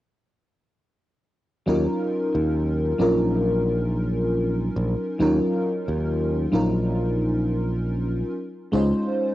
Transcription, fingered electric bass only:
1.68 D#2
2.35 D#2
3.00 A#1
4.76 A#1
5.20 D#2
5.88 D#2
6.53 A#1
8.73 C#2

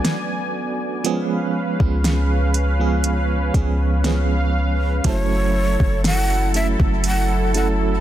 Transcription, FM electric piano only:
Already playing: F#3 A3 B3 C#4 D4 F#4 A4
1.04 F3 G#3 B3 C#4 G#4
1.79 F3 G#3 B3 C#4 F4
2.79 F3 G#3 B3 C#4 G#4
3.54 F3 G#3 B3 C#4 G#4
4.04 F3 G#3 B3 C#4 G#4
5.04 F#3 A3 C#4 E4 A4
6.54 F#3 A3 C#4 E4 A4
7.54 F#3 A3 C#4 E4 A4

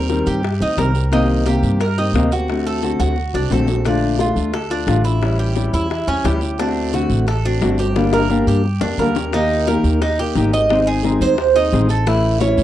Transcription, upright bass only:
Already playing: D#2
0.27 G2
0.61 D2
0.77 C2
1.63 G2
2.13 D2
2.99 D2
3.34 C2
3.51 A#1
4.36 D2
4.87 A1
5.73 E2
6.07 E2
6.25 D2
7.10 A1
7.61 G1
8.47 G2
8.81 F2
8.98 D#2
9.84 D#2
10.35 G#1
11.21 D#2
11.72 A1
12.58 E2

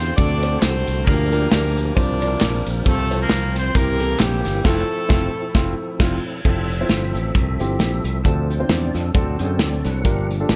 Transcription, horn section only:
Already playing: C4 F4 C5
0.17 D4 F#4 A4 D5
0.60 C4 F#4 A4 C5
1.05 A#3 F4 G4 A#4
1.50 A#3 F4 G4 A#4
1.96 D4 F4 A#4 D5
2.87 A3 C4 F4 A4
3.21 A#3 F4 A#4
3.58 C4 C5
3.76 A#3 E4 G4 A#4
4.20 G3 A#3 E4 G4
4.65 A3 C4 E4 A4

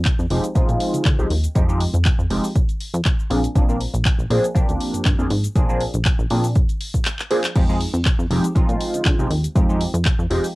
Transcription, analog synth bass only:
0.19 F2
0.30 F1
0.56 A#2
0.69 A#2
0.94 D3
1.06 D3
1.19 C2
1.30 D#2
1.56 F2
1.94 F2
2.19 F2
2.30 F1
2.94 F2
3.30 A#1
3.56 A#1
3.94 A#1
4.19 A#1
4.30 A#2
4.55 D2
4.69 D2
4.94 G2
5.06 G2
5.19 F2
5.30 G#2
5.55 A#1
5.94 A#1
6.19 A#1
6.31 A#2
6.56 F2
7.56 F2
7.94 F2
8.19 F2
8.30 F1
8.56 A#2
8.69 A#2
8.94 D3
9.06 D3
9.19 C2
9.30 D#2
9.56 F2
9.94 F2
10.19 F2
10.30 F1

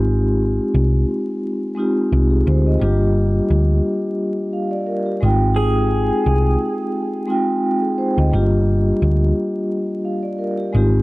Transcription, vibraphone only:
Already playing: G#3 C4 D#4 F4 G4
1.75 G#3 C4 D#4 F4
1.79 G4
2.30 G#4
2.47 C5
2.67 D#5
2.79 G3 A#3 D4 F4
2.84 G4
4.53 F5
4.71 D5
4.87 A#4
5.06 G4
5.20 G#3 C4 D#4 F4
5.25 G5
7.27 G#3 C4 D#4 F4
7.31 G5
7.82 G#4
7.98 C5
8.18 D#5
8.31 G3 A#3 D4 F4
8.35 G4
10.05 F5
10.23 D5
10.38 A#4
10.58 G4
10.72 G#3 C4 D#4 F4
10.77 G4

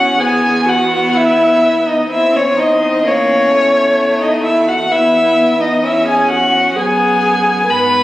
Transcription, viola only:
Already playing: F#4
0.19 G#4
0.66 F#4
1.14 E4
1.86 D#4
2.10 E4
2.33 C#4
2.57 D#4
3.03 C#4
4.20 D#4
4.44 E4
4.67 F#4
4.91 E4
5.60 D#4
5.84 E4
6.05 G#4
6.30 F#4
6.76 G#4
7.67 B4

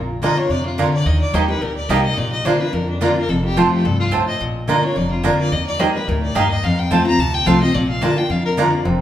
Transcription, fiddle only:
0.22 D#5
0.37 C#5
0.51 D5
0.66 F4
0.79 A#4
0.93 D5
1.06 D#5
1.21 D5
1.34 C5
1.48 B4
1.62 A#4
1.76 D5
1.89 F5
2.04 D#5
2.18 D5
2.32 D#5
2.45 C5
2.60 B4
2.74 A#4
2.89 D4
3.02 F4
3.17 A#4
3.30 A4
3.44 G4
3.58 F4
3.73 G4
3.85 A4
4.00 F4
4.28 D#5
4.69 D#5
4.84 C#5
4.97 D5
5.11 F4
5.24 A#4
5.39 D5
5.52 D#5
5.66 D5
5.80 C5
5.94 B4
6.08 A#4
6.22 D5
6.35 F5
6.51 D#5
6.64 F5
6.79 G5
6.91 A5
7.06 A#5
7.19 A5
7.34 G5
7.46 F5
7.61 D#5
7.74 D5
7.89 F5
8.02 A5
8.18 G5
8.30 F5
8.45 A#4

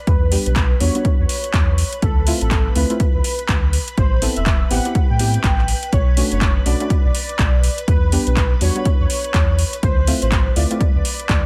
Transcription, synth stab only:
0.31 G3 B3 D4 G4
0.80 G3 B3 D4 F#4
0.94 G3 B3 D4 F#4
2.26 A3 C4 E4 F4
2.75 A3 C4 E4 F4
2.90 A3 C4 E4 F4
4.21 B3 C4 E4 A4
4.70 B3 C4 E4 G4
4.85 B3 C4 E4 G4
5.19 B3 C4 E4 G4
6.17 A3 C#4 D4 F#4
6.66 A3 C#4 D4 F#4
6.80 A3 C#4 D4 F#4
8.12 G3 B3 D4 G4
8.61 G3 B3 D4 F#4
8.75 G3 B3 D4 F#4
10.07 A3 C4 E4 F4
10.56 A3 C4 E4 F4
10.70 A3 C4 E4 F4

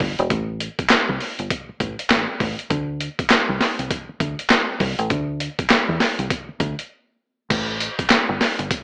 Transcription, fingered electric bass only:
0.00 G1
0.19 E1
0.30 A1
1.09 C2
1.39 G1
1.69 muted fingered electric bass stroke
1.80 A1
2.11 A1
2.40 A1
2.71 D2
3.49 C2
3.79 C2
4.09 muted fingered electric bass stroke
4.20 D2
4.80 C2
4.99 A1
5.10 D2
5.89 E2
6.19 C2
6.49 muted fingered electric bass stroke
6.60 D2
7.50 A1
8.29 G1
8.59 G1

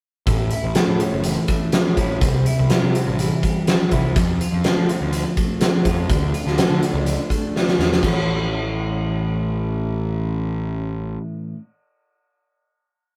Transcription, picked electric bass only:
0.27 A1
0.64 A1
0.88 A2
1.12 F#1
1.97 A1
2.21 C2
2.59 C2
2.83 C3
3.07 A1
3.92 C2
4.16 F2
4.52 F2
4.76 F3
5.01 D2
5.86 F2
6.10 D2
6.46 D2
6.70 D3
6.93 C#2
7.79 E2
8.03 A1

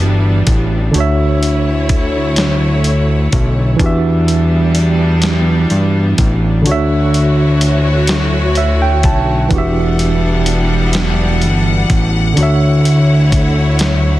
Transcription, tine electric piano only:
Already playing: E3 D4 F#4 G4 E5
0.91 D3 D4
0.95 F#4 C#5
1.00 E5
3.76 E3 D4
3.81 F#4 G4
3.86 E5
6.62 D3 D4
6.67 F#4 C#5
6.71 E5
8.58 E5
8.82 G5
9.05 A5
9.49 E3 D4
9.54 F#4 G4
9.58 E5
12.34 D3 D4
12.38 F#4 C#5
12.43 E5

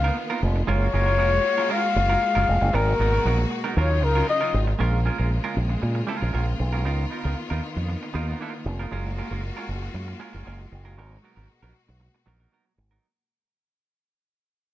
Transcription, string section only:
Already playing: D#3 A#3 B3 F4
0.67 G#3 F4 F#4
2.74 B2 A#3 F#4
3.77 C#3 F#3 D#4 F4
4.79 C#3 G#3 A#3 F4
6.85 D#3 A#3 B3
8.90 G#3 F4 F#4
10.98 B2 F#4

